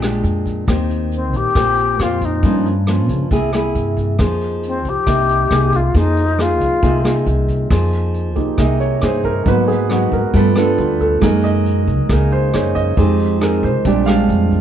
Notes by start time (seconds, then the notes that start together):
Already playing: A#1 A#2
0.02 G#3 D4 G4, cross-stick, closed hi-hat, shaker
0.24 F2, closed hi-hat, shaker
0.46 kick, closed hi-hat, shaker
0.68 D#2 D#3 A#3 C4 G4, kick, cross-stick, closed hi-hat, shaker
0.90 closed hi-hat, shaker
1.12 C4, closed hi-hat, shaker
1.33 A#1 G4, kick, closed hi-hat, shaker
1.55 A#1 A#2 A#3 C4 G4, kick, cross-stick, closed hi-hat, shaker
1.78 closed hi-hat, shaker
1.99 F2 A#3 C4 F4 G4, cross-stick, closed hi-hat, shaker
2.21 D#4, kick, closed hi-hat, shaker
2.43 G2 F3 A#3 C#4, kick, closed hi-hat, shaker
2.65 closed hi-hat, shaker
2.87 F3 A#3 C#4, cross-stick, closed hi-hat, shaker
3.09 C#3, kick, closed hi-hat, shaker
3.31 C2 C3 A#3 E4 G#4, kick, closed hi-hat, shaker
3.53 A#3 E4 G#4, cross-stick, closed hi-hat, shaker
3.75 G2, closed hi-hat, shaker
3.97 kick, closed hi-hat, shaker
4.19 F2 F3 A#3 D#4 G#4, kick, cross-stick, closed hi-hat, shaker
4.41 closed hi-hat, shaker
4.63 closed hi-hat, shaker
4.67 C4
4.85 C2, kick, closed hi-hat, shaker
4.89 G4
5.07 C2 C3 A#3 D#4, kick, cross-stick, closed hi-hat, shaker
5.29 closed hi-hat, shaker
5.51 C2 A#3 D#4 G#4, cross-stick, closed hi-hat, shaker
5.73 F4, kick, closed hi-hat, shaker
5.94 F2 F3 A#3 D#4 G#4, kick, closed hi-hat, shaker
5.99 D#4
6.17 closed hi-hat, shaker
6.38 A#3 D#4 F4 G#4, cross-stick, closed hi-hat, shaker
6.61 C2, kick, closed hi-hat, shaker
6.82 C2 C3 A#3 D#4 F4 G#4, kick, closed hi-hat, shaker
7.04 A#3 D#4 G#4, cross-stick, closed hi-hat, shaker
7.26 C2, closed hi-hat, shaker
7.49 kick, closed hi-hat, shaker
7.70 F2 F3 A#3 D#4 G#4, kick, cross-stick, closed hi-hat
7.92 closed hi-hat
8.14 closed hi-hat
8.35 C2 A#3 D#4 G4 G#4, kick, closed hi-hat
8.58 C2 C3 A#3 D#4 G#4 D#5, kick, cross-stick, closed hi-hat
8.80 C#5, closed hi-hat
9.01 G2 A#3 D#4 G#4 C5, cross-stick, closed hi-hat
9.24 A#4, kick, closed hi-hat
9.44 G#2 F#3 A#3 B3 D#4 F#4 A#4, kick, closed hi-hat
9.48 B4
9.68 G#4, closed hi-hat
9.90 F#3 B3 D#4 F#4, cross-stick, closed hi-hat
10.12 G#2 A#4, kick, closed hi-hat
10.34 G2 G3 A3 B3 F4 A4 B4, kick, closed hi-hat
10.55 B3 D4 F4 A4, cross-stick, closed hi-hat
10.78 D2 F4, closed hi-hat
11.00 A4, kick, closed hi-hat
11.21 F#2 F#3 G#3 A#3 D#4 G#4 A#4, kick, cross-stick, closed hi-hat
11.44 D#5, closed hi-hat
11.66 closed hi-hat
11.87 C#2, kick, closed hi-hat
12.09 C#2 C#3 A#3 D#4 G#4 A#4, kick, cross-stick, closed hi-hat
12.32 C5, closed hi-hat
12.53 F#2 A#3 D#4 G#4 C#5, cross-stick, closed hi-hat
12.75 D#5, kick, closed hi-hat
12.97 F2 F3 G#3 C4 D#4 G4 G#4, kick, closed hi-hat
13.19 closed hi-hat
13.41 C4 D#4 G#4 A#4, cross-stick, closed hi-hat
13.63 C2 C5, kick, closed hi-hat
13.85 A#1 A#2 G3 G#3 C4 D4 G4 D5, kick, closed hi-hat
14.06 G#3 D4 G4 F5, cross-stick, closed hi-hat
14.29 F2, closed hi-hat
14.51 kick, closed hi-hat